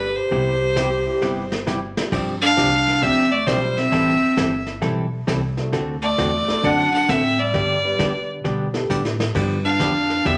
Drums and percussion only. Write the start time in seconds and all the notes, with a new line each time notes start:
0.31 brush sweep
0.76 snare, hi-hat pedal
1.22 snare
1.52 snare
1.67 snare, hi-hat pedal
1.97 snare
2.12 brush sweep, kick, snare, crash
2.58 snare, hi-hat pedal
2.88 snare
3.03 brush sweep, snare
3.47 snare, hi-hat pedal
3.77 snare
3.92 brush sweep, snare
4.37 snare, hi-hat pedal
4.67 snare
4.82 brush sweep, snare
5.28 snare, hi-hat pedal
5.57 snare
5.73 brush sweep, snare
6.18 snare, hi-hat pedal
6.48 snare
6.64 brush sweep, snare
7.09 snare, hi-hat pedal
7.54 brush sweep, snare
7.99 snare, hi-hat pedal
8.45 brush sweep, snare
8.74 snare
8.90 hi-hat pedal
9.05 snare
9.20 snare
9.35 brush sweep, kick, snare, crash
9.80 snare, hi-hat pedal
10.10 snare
10.25 brush sweep, snare